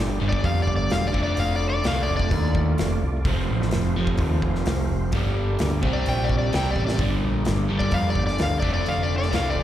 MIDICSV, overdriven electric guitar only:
0, 0, Header, 1, 2, 480
1, 0, Start_track
1, 0, Key_signature, -2, "minor"
1, 0, Tempo, 468019
1, 1413, Time_signature, 4, 2, 24, 8
1, 9878, End_track
2, 0, Start_track
2, 0, Title_t, "Overdriven electric guitar"
2, 0, Program_c, 0, 29
2, 0, Note_on_c, 0, 43, 79
2, 0, Note_on_c, 0, 50, 80
2, 0, Note_on_c, 0, 55, 90
2, 193, Note_off_c, 0, 55, 0
2, 195, Note_off_c, 0, 43, 0
2, 204, Note_off_c, 0, 50, 0
2, 205, Note_on_c, 0, 55, 84
2, 224, Note_on_c, 0, 50, 72
2, 232, Note_on_c, 0, 43, 76
2, 1146, Note_off_c, 0, 50, 0
2, 1155, Note_off_c, 0, 55, 0
2, 1159, Note_on_c, 0, 50, 85
2, 1168, Note_on_c, 0, 57, 96
2, 1169, Note_off_c, 0, 43, 0
2, 1183, Note_on_c, 0, 62, 87
2, 1873, Note_off_c, 0, 50, 0
2, 1885, Note_off_c, 0, 62, 0
2, 1891, Note_on_c, 0, 50, 67
2, 1901, Note_off_c, 0, 57, 0
2, 1905, Note_on_c, 0, 57, 77
2, 1921, Note_on_c, 0, 62, 67
2, 3080, Note_off_c, 0, 50, 0
2, 3087, Note_off_c, 0, 57, 0
2, 3095, Note_off_c, 0, 62, 0
2, 3340, Note_on_c, 0, 41, 74
2, 3353, Note_on_c, 0, 48, 89
2, 3364, Note_on_c, 0, 53, 90
2, 4044, Note_off_c, 0, 41, 0
2, 4051, Note_off_c, 0, 48, 0
2, 4053, Note_off_c, 0, 53, 0
2, 4065, Note_on_c, 0, 53, 83
2, 4082, Note_on_c, 0, 48, 75
2, 4095, Note_on_c, 0, 41, 66
2, 5247, Note_off_c, 0, 53, 0
2, 5255, Note_off_c, 0, 48, 0
2, 5262, Note_off_c, 0, 41, 0
2, 5269, Note_on_c, 0, 43, 85
2, 5280, Note_on_c, 0, 50, 80
2, 5292, Note_on_c, 0, 55, 88
2, 5968, Note_off_c, 0, 43, 0
2, 5968, Note_off_c, 0, 50, 0
2, 5972, Note_on_c, 0, 48, 92
2, 5980, Note_off_c, 0, 55, 0
2, 5984, Note_on_c, 0, 55, 84
2, 6001, Note_on_c, 0, 60, 93
2, 6679, Note_off_c, 0, 48, 0
2, 6685, Note_off_c, 0, 55, 0
2, 6691, Note_on_c, 0, 48, 72
2, 6694, Note_off_c, 0, 60, 0
2, 6704, Note_on_c, 0, 55, 83
2, 6716, Note_on_c, 0, 60, 76
2, 7158, Note_off_c, 0, 48, 0
2, 7165, Note_off_c, 0, 55, 0
2, 7169, Note_on_c, 0, 43, 75
2, 7171, Note_off_c, 0, 60, 0
2, 7185, Note_on_c, 0, 50, 82
2, 7195, Note_on_c, 0, 55, 95
2, 7874, Note_off_c, 0, 55, 0
2, 7877, Note_off_c, 0, 43, 0
2, 7885, Note_off_c, 0, 50, 0
2, 7887, Note_on_c, 0, 55, 88
2, 7906, Note_on_c, 0, 50, 78
2, 7913, Note_on_c, 0, 43, 72
2, 8822, Note_off_c, 0, 50, 0
2, 8834, Note_on_c, 0, 50, 85
2, 8835, Note_off_c, 0, 55, 0
2, 8848, Note_off_c, 0, 43, 0
2, 8848, Note_on_c, 0, 57, 88
2, 8862, Note_on_c, 0, 62, 95
2, 9537, Note_off_c, 0, 50, 0
2, 9549, Note_on_c, 0, 50, 74
2, 9561, Note_off_c, 0, 57, 0
2, 9561, Note_off_c, 0, 62, 0
2, 9565, Note_on_c, 0, 57, 74
2, 9573, Note_on_c, 0, 62, 88
2, 9878, Note_off_c, 0, 50, 0
2, 9878, Note_off_c, 0, 57, 0
2, 9878, Note_off_c, 0, 62, 0
2, 9878, End_track
0, 0, End_of_file